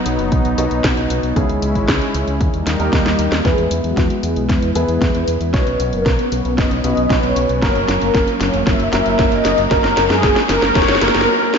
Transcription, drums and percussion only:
0.06 closed hi-hat
0.19 closed hi-hat
0.32 kick, closed hi-hat
0.45 closed hi-hat
0.58 closed hi-hat
0.71 closed hi-hat
0.84 kick, snare, closed hi-hat
0.97 closed hi-hat
1.10 closed hi-hat
1.23 closed hi-hat
1.36 kick, closed hi-hat
1.49 closed hi-hat
1.62 closed hi-hat
1.75 kick, closed hi-hat
1.88 kick, snare, closed hi-hat
2.02 closed hi-hat
2.15 closed hi-hat
2.28 closed hi-hat
2.41 kick, closed hi-hat
2.54 closed hi-hat
2.67 snare, closed hi-hat
2.80 closed hi-hat
2.93 kick, snare, closed hi-hat
3.06 snare, closed hi-hat
3.19 closed hi-hat
3.32 snare, closed hi-hat
3.45 kick, snare, closed hi-hat
3.58 closed hi-hat
3.71 closed hi-hat
3.84 closed hi-hat
3.97 kick, snare, closed hi-hat
4.10 closed hi-hat
4.23 closed hi-hat
4.36 closed hi-hat
4.49 kick, snare, closed hi-hat
4.62 closed hi-hat
4.75 closed hi-hat
4.88 closed hi-hat
5.01 kick, snare, closed hi-hat
5.15 closed hi-hat
5.28 closed hi-hat
5.41 closed hi-hat
5.54 kick, snare, closed hi-hat
5.67 closed hi-hat
5.80 closed hi-hat
5.93 closed hi-hat
6.06 kick, snare, closed hi-hat
6.19 closed hi-hat
6.32 closed hi-hat
6.45 closed hi-hat
6.58 kick, snare, closed hi-hat
6.71 closed hi-hat
6.84 closed hi-hat
6.97 closed hi-hat
7.10 kick, snare, closed hi-hat
7.23 closed hi-hat
7.36 closed hi-hat
7.49 closed hi-hat
7.62 kick, snare, closed hi-hat
7.75 closed hi-hat
7.88 snare, closed hi-hat
8.01 closed hi-hat
8.15 kick, snare, closed hi-hat
8.28 closed hi-hat
8.41 snare, closed hi-hat
8.54 closed hi-hat
8.67 kick, snare, closed hi-hat
8.80 closed hi-hat
8.93 snare, closed hi-hat
9.06 closed hi-hat
9.19 kick, snare, closed hi-hat
9.32 closed hi-hat
9.45 snare, closed hi-hat
9.58 closed hi-hat
9.71 kick, snare, closed hi-hat
9.84 snare, closed hi-hat
9.97 snare, closed hi-hat
10.10 snare, closed hi-hat
10.23 kick, snare, closed hi-hat
10.36 snare, closed hi-hat
10.49 snare, closed hi-hat
10.62 snare, closed hi-hat
10.75 kick, snare, closed hi-hat
10.82 snare
10.88 snare, closed hi-hat
10.95 snare
11.01 snare, closed hi-hat
11.08 snare
11.15 snare, closed hi-hat
11.21 snare
11.54 snare

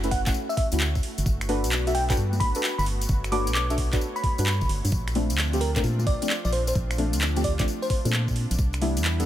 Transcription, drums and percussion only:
0.03 closed hi-hat, tambourine
0.11 kick, open hi-hat
0.26 kick, clap, closed hi-hat, tambourine
0.34 tambourine
0.50 tambourine
0.57 kick, open hi-hat
0.72 closed hi-hat, tambourine
0.80 clap, tambourine
0.95 kick, tambourine
1.03 open hi-hat
1.18 closed hi-hat, tambourine
1.26 kick, tambourine
1.41 finger snap, closed hi-hat, tambourine
1.49 open hi-hat, high conga
1.64 closed hi-hat, tambourine
1.72 clap, tambourine
1.87 closed hi-hat, tambourine
1.95 open hi-hat
2.10 kick, clap, closed hi-hat, tambourine
2.17 tambourine
2.33 tambourine, high conga
2.40 kick, open hi-hat
2.55 closed hi-hat, tambourine
2.63 clap, tambourine
2.79 tambourine
2.86 open hi-hat
3.01 closed hi-hat, tambourine
3.09 kick, tambourine
3.24 finger snap, closed hi-hat, tambourine
3.32 open hi-hat, high conga
3.47 closed hi-hat, tambourine
3.55 clap, tambourine
3.70 closed hi-hat, tambourine
3.78 kick, open hi-hat
3.93 kick, clap, closed hi-hat, tambourine
4.01 tambourine
4.16 tambourine
4.24 kick, open hi-hat
4.38 closed hi-hat, tambourine
4.46 clap, tambourine
4.61 kick, tambourine
4.69 open hi-hat
4.85 closed hi-hat, tambourine
4.92 kick, tambourine
5.07 finger snap, closed hi-hat, tambourine
5.15 open hi-hat, high conga
5.30 closed hi-hat, tambourine
5.38 clap, tambourine
5.53 closed hi-hat, tambourine
5.61 open hi-hat
5.76 kick, clap, closed hi-hat, tambourine
5.84 tambourine
5.99 tambourine, high conga
6.07 kick, open hi-hat
6.22 closed hi-hat, tambourine
6.30 clap, tambourine
6.45 tambourine
6.53 open hi-hat
6.67 closed hi-hat, tambourine
6.75 kick, tambourine
6.91 finger snap, closed hi-hat, tambourine
6.98 open hi-hat, high conga
7.13 closed hi-hat, tambourine
7.21 clap, tambourine
7.36 closed hi-hat, tambourine
7.44 kick, open hi-hat
7.59 kick, clap, closed hi-hat, tambourine
7.68 tambourine
7.83 tambourine
7.90 kick, open hi-hat
8.05 closed hi-hat, tambourine
8.13 clap, tambourine
8.28 kick, tambourine
8.36 open hi-hat
8.51 closed hi-hat, tambourine
8.59 kick, tambourine
8.73 finger snap, closed hi-hat, tambourine
8.82 open hi-hat, high conga
8.97 closed hi-hat, tambourine
9.04 clap, tambourine
9.20 closed hi-hat, tambourine

